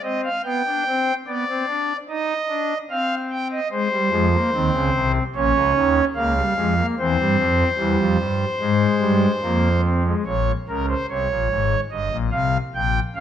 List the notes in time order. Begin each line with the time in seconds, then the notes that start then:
0.03 C4 D#5
0.24 F5
0.44 B3 G5
0.66 D4
0.88 C4
1.27 B3 D5
1.49 C4
1.68 D4
2.09 D#4 D#5
2.49 D4
2.91 C4 F5
3.31 G5
3.51 D#5
3.71 G#3 C5
3.92 G3
4.10 F2 F3 G#3
4.33 A#3
4.53 D#2 D#3 C4
4.73 C#2 C#3
4.93 C2 C3
5.35 A#1 A#2 C#4 C#5
5.54 C#2 C#3
5.75 D#2 D#3
6.16 C#2 C#3 A#3 F5
6.36 G3
6.56 F2 F3 G#3
6.78 A#3
6.99 E2 E3 C4 C5
7.19 G2 G3
7.38 F2 F3
7.78 E2 E3 G3
7.99 F2 F3
8.19 G2 G3
8.60 G#2 G#3
9.00 G2 G3
9.42 F2 F3 A#3
9.86 C4
10.05 G#3
10.26 A#1 A#2 C#5
10.68 C#2 C#3 A#4
10.89 C5
11.10 C2 C3 C#5
11.30 A#1 A#2
11.50 G#1 G#2
11.91 G1 G2 D#5
12.12 A#1 A#2
12.31 C2 C3 F5
12.74 A#1 A#2 G5
13.16 C#2 C#3 F5